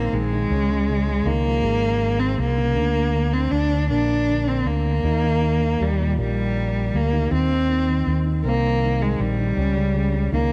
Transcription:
Already playing: grand piano D#3 C4, cello A#3
0.13 fretless electric bass A#1, grand piano D#3, cello G#3
0.33 grand piano D#3
0.50 fretless electric bass C#2, grand piano C#4
0.70 grand piano C#3
0.89 grand piano C#3
1.07 grand piano C#3
1.25 fretless electric bass C#2, grand piano D#3, cello A#3
1.46 grand piano F3
1.62 fretless electric bass G#1, grand piano G#3
2.19 cello C4
2.38 fretless electric bass C2, cello A#3
2.58 grand piano C#3
2.75 fretless electric bass D2, grand piano D3
2.95 grand piano D3
3.14 grand piano D3
3.33 grand piano D3, cello C4
3.51 fretless electric bass D2, grand piano D3, cello D4
3.72 grand piano D3
3.90 fretless electric bass A#1, grand piano A#3, cello D4
4.09 grand piano D3
4.29 grand piano D3
4.48 grand piano D3, cello C4
4.65 fretless electric bass D2, grand piano D3, cello A#3
4.85 grand piano D3
5.03 fretless electric bass D#2, grand piano D#4
5.23 grand piano D#3
5.41 grand piano D#3
5.61 grand piano D#3
5.80 fretless electric bass D#2, grand piano G3, cello G3
6.00 grand piano A#2
6.18 fretless electric bass A#1, cello G3, grand piano A#3
6.94 fretless electric bass D2, cello A#3
7.13 grand piano D#3
7.31 fretless electric bass D#2, grand piano D#3, cello C4
7.50 grand piano D#3
7.70 grand piano D#3
7.89 grand piano D#3
8.07 fretless electric bass D#2, grand piano D#3
8.26 grand piano D#3
8.44 fretless electric bass C2, cello A#3, grand piano C4
8.64 grand piano D#3
8.83 grand piano D#3
9.01 grand piano D#3, cello G#3
9.19 fretless electric bass A#1, grand piano D#3, cello G3
9.38 grand piano D#3
9.57 fretless electric bass C#2, grand piano C#4
9.76 grand piano C#3
9.94 grand piano C#3
10.13 grand piano C#3
10.32 fretless electric bass C#2, grand piano D#3, cello A#3

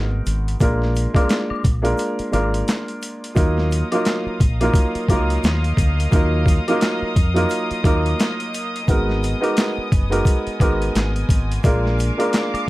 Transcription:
Already playing: fingered electric bass G#1, upright piano G#3 B3 D#4 F#4 A#4
0.26 fingered electric bass G#1, closed hi-hat, shaker
0.48 closed hi-hat
0.60 fingered electric bass A#1, upright piano G#3 A#3 D4 F4 A#4, kick, closed hi-hat, shaker
0.82 snare
0.95 closed hi-hat, shaker
1.13 upright piano G#3 A#3 D4 F4 A#4, kick, closed hi-hat, high woodblock
1.29 snare, clap, closed hi-hat, shaker
1.50 muted fingered electric bass stroke, high woodblock
1.64 fingered electric bass A#1, kick, closed hi-hat, shaker
1.82 upright piano G#3 A#3 D4 F4 A#4, closed hi-hat
1.98 closed hi-hat, shaker
2.19 muted fingered electric bass stroke, closed hi-hat
2.31 fingered electric bass G#1, upright piano G#3 A#3 D4 F4 A#4, closed hi-hat, high woodblock, shaker
2.54 closed hi-hat
2.68 snare, clap, closed hi-hat, shaker
2.88 closed hi-hat
3.02 closed hi-hat, shaker
3.24 closed hi-hat
3.35 fingered electric bass D#2, upright piano F#3 A#3 D#4 F4 A#4, string section A#4 D#5 F5 D#6, kick, closed hi-hat, shaker
3.58 snare
3.71 closed hi-hat, shaker
3.92 upright piano F#3 A#3 D#4 F4 A#4, closed hi-hat, high woodblock
4.05 snare, clap, closed hi-hat, shaker
4.26 muted fingered electric bass stroke
4.40 fingered electric bass A#1, kick, closed hi-hat, shaker
4.60 upright piano F#3 A#3 D#4 F4 A#4, closed hi-hat, high woodblock
4.74 kick, closed hi-hat, shaker
4.95 muted fingered electric bass stroke, closed hi-hat
5.08 fingered electric bass C#2, upright piano F#3 A#3 D#4 F4 A#4, kick, closed hi-hat, high woodblock, shaker
5.30 closed hi-hat
5.44 fingered electric bass D#2, snare, clap, closed hi-hat, shaker
5.64 closed hi-hat
5.77 fingered electric bass D2, kick, closed hi-hat, shaker
6.00 closed hi-hat
6.11 fingered electric bass D#2, upright piano F#3 A#3 D#4 F4 A#4, kick, closed hi-hat, shaker
6.46 kick, closed hi-hat, shaker
6.68 upright piano F#3 A#3 D#4 F4 A#4, closed hi-hat, high woodblock
6.81 snare, clap, closed hi-hat, shaker
7.02 muted fingered electric bass stroke
7.16 fingered electric bass F2, kick, closed hi-hat, shaker
7.34 upright piano F#3 A#3 D#4 F4 A#4, closed hi-hat, high woodblock
7.49 closed hi-hat, shaker
7.71 muted fingered electric bass stroke, closed hi-hat
7.83 fingered electric bass D#2, upright piano F#3 A#3 D#4 F4 A#4, kick, closed hi-hat, high woodblock, shaker
8.06 closed hi-hat
8.20 snare, clap, closed hi-hat, shaker
8.40 closed hi-hat
8.54 closed hi-hat, shaker
8.76 closed hi-hat
8.87 fingered electric bass G#1, upright piano G#3 B3 D#4 F#4 A#4, string section B3 G#5, kick, closed hi-hat, shaker
9.09 snare
9.23 closed hi-hat, shaker
9.40 upright piano G#3 B3 D#4 F#4 A#4, closed hi-hat, high woodblock
9.57 snare, clap, closed hi-hat, shaker
9.78 muted fingered electric bass stroke
9.92 fingered electric bass F#1, kick, closed hi-hat, shaker
10.10 upright piano G#3 B3 D#4 F#4 A#4, closed hi-hat, high woodblock
10.25 kick, closed hi-hat, shaker
10.47 muted fingered electric bass stroke, closed hi-hat
10.60 fingered electric bass G#1, upright piano G#3 B3 D#4 F#4 A#4, kick, closed hi-hat, high woodblock, shaker
10.82 closed hi-hat
10.95 fingered electric bass G#1, snare, clap, closed hi-hat, shaker
11.16 closed hi-hat
11.29 fingered electric bass G#1, kick, closed hi-hat, shaker
11.52 closed hi-hat
11.63 fingered electric bass A#1, upright piano G#3 A#3 D4 F4 A#4, string section A#4 F5 D6, kick, closed hi-hat, shaker
11.85 snare
11.99 closed hi-hat, shaker
12.17 upright piano G#3 A#3 D4 F4 A#4, closed hi-hat, high woodblock
12.33 snare, clap, closed hi-hat, shaker
12.54 muted fingered electric bass stroke, closed hi-hat, high woodblock

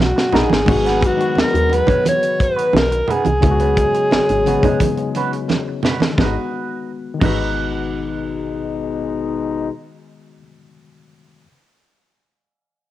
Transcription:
Already playing: reed electric piano B2 F#3 G#3 A#3
0.00 fm bass B1, alto saxophone F#4, snare
0.16 muted clean electric guitar stroke, snare
0.32 fm bass A#1, trombone section D#3 B3 D#4, clean electric guitar B3 F#4 A#4, snare, muted conga, low conga
0.37 alto saxophone G#4
0.50 fm bass G#1, muted clean electric guitar stroke, snare, high conga
0.65 fm bass G#1, reed electric piano D#3 G#3 B3 F#4, trombone section F#3 G#3 B3, muted clean electric guitar stroke, kick, crash, muted conga, low conga
0.85 clean electric guitar D#4 F#4 B4, snare, closed hi-hat
1.01 kick, closed hi-hat, muted conga
1.06 alto saxophone F#4
1.17 reed electric piano D#3 G#3 B3, muted clean electric guitar stroke, closed hi-hat
1.21 reed electric piano F#4
1.35 fm bass D#2, muted clean electric guitar stroke, snare, muted conga
1.40 alto saxophone A#4
1.53 fm bass D#2, muted clean electric guitar stroke, closed hi-hat
1.69 clean electric guitar D#4 F#4 B4, closed hi-hat, muted conga
1.74 alto saxophone B4
1.87 clean electric guitar D#4 F#4 C#5, kick, closed hi-hat, low conga
2.05 alto saxophone C#5, muted clean electric guitar stroke, closed hi-hat, high conga
2.22 muted clean electric guitar stroke, closed hi-hat
2.40 alto saxophone B4, kick, closed hi-hat
2.56 clean electric guitar D#4 F#4 B4, closed hi-hat
2.73 fm bass B1, alto saxophone A#4, muted clean electric guitar stroke, snare, high conga
2.92 muted clean electric guitar stroke, closed hi-hat
3.08 clean electric guitar D#4 F#4 B4, alto saxophone G#4, closed hi-hat, muted conga, low conga
3.25 fm bass C2, muted clean electric guitar stroke, closed hi-hat, high conga
3.41 fm bass C#2, reed electric piano C#3 G#3 B3 F4, trombone section F#3 G#3 C#4, muted clean electric guitar stroke, kick, closed hi-hat, muted conga, low conga
3.51 reed electric piano F#4
3.60 clean electric guitar C#4 F#4 B4, closed hi-hat
3.77 muted clean electric guitar stroke, kick, closed hi-hat
3.94 muted clean electric guitar stroke, closed hi-hat
4.11 fm bass G#1, muted clean electric guitar stroke, snare, muted conga
4.29 fm bass G#1, muted clean electric guitar stroke, closed hi-hat
4.44 reed electric piano C#3 G#3 B3 F#4, clean electric guitar C#4 F#4 B4, closed hi-hat, muted conga
4.62 reed electric piano C#3 G#3 B3 D#4, clean electric guitar C#4 F#4 C#5, kick, closed hi-hat, low conga
4.80 muted clean electric guitar stroke, kick, closed hi-hat, muted conga, high conga
4.97 muted clean electric guitar stroke, closed hi-hat
5.15 clean electric guitar C#4 F#4 B4, closed hi-hat, muted conga
5.33 muted clean electric guitar stroke, closed hi-hat
5.50 muted clean electric guitar stroke, snare, muted conga, high conga
5.68 muted clean electric guitar stroke
5.83 clean electric guitar C#4 F#4 B4, snare, low conga
6.00 snare, high conga
6.10 reed electric piano D#3
6.15 fm bass G#1, trombone section B2 G#3 D#4, reed electric piano G#3, clean electric guitar D#4, kick, snare, high conga
6.20 reed electric piano B3, clean electric guitar F#4 B4
6.26 reed electric piano F#4
7.14 reed electric piano D#3
7.19 fm bass G#1, trombone section B2 G#3 D#4, reed electric piano G#3, clean electric guitar D#4, kick, crash, high conga
7.23 reed electric piano B3, clean electric guitar F#4 B4
7.29 reed electric piano F#4

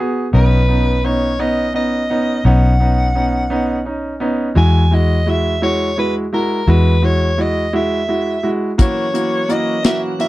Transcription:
0.00 grand piano B3 F#4 G#4
0.33 fingered electric bass B1, grand piano B3 C#4 D#4, soprano saxophone B4
0.69 grand piano B3 C#4 D#4
1.04 grand piano B3 C#4 D#4, soprano saxophone C#5
1.39 grand piano B3 C#4 D#4, soprano saxophone D#5
1.74 grand piano B3 C#4 D#4, soprano saxophone D#5
2.10 grand piano B3 C#4 D#4
2.45 fingered electric bass B1, grand piano B3 C#4 D#4, soprano saxophone F#5
2.80 grand piano B3 C#4 D#4
3.15 grand piano B3 C#4 D#4
3.50 grand piano B3 C#4 D#4
3.86 grand piano C#4 D#4
4.20 grand piano B3 C#4 D#4
4.55 fingered electric bass E2, grand piano G#3 E4 F#4, soprano saxophone G#5
4.91 grand piano G#3 E4 F#4, soprano saxophone D#5
5.26 grand piano G#3 E4 F#4, soprano saxophone E5
5.62 grand piano G#3 E4 F#4, soprano saxophone C#5
5.97 grand piano G#3 E4 F#4, soprano saxophone B4
6.33 grand piano G#3 E4 F#4, soprano saxophone A#4
6.67 fingered electric bass E2, grand piano G#3 E4 F#4, soprano saxophone B4
7.02 grand piano G#3 E4 F#4, soprano saxophone C#5
7.38 grand piano G#3 E4 F#4, soprano saxophone D#5
7.73 grand piano G#3 E4 F#4, soprano saxophone E5
8.08 grand piano G#3 E4 F#4
8.43 grand piano G#3 E4 F#4
8.78 fingered electric bass F#2, tonewheel organ E3 F#3 A#3 C#4 F#4, grand piano A#3 E4 F#4, soprano saxophone C#5, kick, closed hi-hat
9.14 grand piano A#3 E4 F#4, closed hi-hat
9.49 grand piano A#3 E4 F#4, soprano saxophone D#5, closed hi-hat
9.84 grand piano A#3 E4 F#4, soprano saxophone E5, snare, closed hi-hat
10.19 grand piano A#3 E4 F#4, soprano saxophone E5, closed hi-hat

